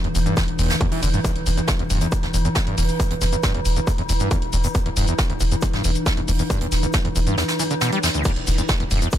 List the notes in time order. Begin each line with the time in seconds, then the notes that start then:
Already playing: E3
0.04 E1 E2, closed hi-hat
0.15 E1 E2, open hi-hat, shaker
0.26 G2, closed hi-hat, shaker
0.37 E2, kick, snare, open hi-hat, shaker
0.48 E1, closed hi-hat
0.58 E1 E2, open hi-hat, shaker
0.70 D2, snare, closed hi-hat, shaker
0.81 E2, kick, closed hi-hat, shaker
0.92 E1 E3, closed hi-hat, open hi-hat
1.03 E1 D3, open hi-hat, shaker
1.14 G2, closed hi-hat, shaker
1.24 E2, kick, closed hi-hat, shaker
1.36 E1, closed hi-hat
1.46 E1 D2, open hi-hat, shaker
1.57 E2, closed hi-hat, shaker
1.68 E2, kick, snare, closed hi-hat, shaker
1.79 E1 E2, closed hi-hat
1.90 E1 G2, open hi-hat, shaker
2.01 E2, closed hi-hat, shaker
2.12 kick, closed hi-hat, shaker
2.23 E1 D2, snare, closed hi-hat
2.34 E1 E2, open hi-hat, shaker
2.45 E2, closed hi-hat, shaker
2.55 E2, kick, snare, closed hi-hat, shaker
2.67 E1 G2, closed hi-hat
2.78 E1 E2, open hi-hat, shaker
2.89 closed hi-hat, shaker
3.00 D2, kick, closed hi-hat, shaker
3.11 E1 E2, closed hi-hat
3.21 E1 E2, snare, open hi-hat, shaker
3.33 E2, closed hi-hat, shaker
3.43 G2, kick, snare, closed hi-hat, shaker
3.54 E1 E2, closed hi-hat
3.65 E1, open hi-hat, shaker
3.76 D2, closed hi-hat, shaker
3.87 E2, kick, open hi-hat, shaker
3.98 E1 E2, closed hi-hat
4.09 E1 E2, open hi-hat, shaker
4.20 G2, closed hi-hat, shaker
4.31 E2, kick, closed hi-hat, shaker
4.42 E1, closed hi-hat
4.53 E1 D2, open hi-hat, shaker
4.64 E2, closed hi-hat, shaker
4.75 E2, kick, closed hi-hat, shaker
4.86 E1 E2, closed hi-hat
4.96 E1 G2, open hi-hat, shaker
5.08 E2, closed hi-hat, shaker
5.18 kick, snare, closed hi-hat, shaker
5.30 E1 D2, closed hi-hat
5.40 E1 E2, open hi-hat, shaker
5.51 E2, closed hi-hat, shaker
5.62 E2, kick, closed hi-hat, shaker
5.73 E1 G2, snare, closed hi-hat
5.84 E1 E2, open hi-hat, shaker
5.95 closed hi-hat, shaker
6.06 D2, kick, snare, closed hi-hat, shaker
6.17 E1 E2, closed hi-hat
6.28 E1 E2, open hi-hat, shaker
6.39 E2, closed hi-hat, shaker
6.50 G2, kick, closed hi-hat, shaker
6.61 E1 E2, closed hi-hat
6.72 E1, snare, open hi-hat, shaker
6.83 D2, closed hi-hat, shaker
6.93 E2, kick, snare, closed hi-hat, shaker
7.05 E1 E2, closed hi-hat
7.16 E1 E2, open hi-hat, shaker
7.27 G2, closed hi-hat, shaker
7.38 E2, snare, open hi-hat, shaker
7.48 snare, closed hi-hat, shaker
7.59 E3, open hi-hat, shaker
7.71 D3, closed hi-hat, shaker
7.81 B2, snare, closed hi-hat, shaker
7.92 G3, closed hi-hat
8.03 E2, snare, open hi-hat, shaker
8.14 D2, closed hi-hat, shaker
8.24 E2 E3, kick, closed hi-hat, crash, shaker
8.36 E1, closed hi-hat
8.47 E1 D2, open hi-hat, shaker
8.58 E2, closed hi-hat, shaker
8.69 E2, kick, snare, closed hi-hat, shaker
8.80 E1 E2, closed hi-hat
8.91 E1 G2, open hi-hat, shaker
9.01 E2, closed hi-hat, shaker
9.11 kick, closed hi-hat, shaker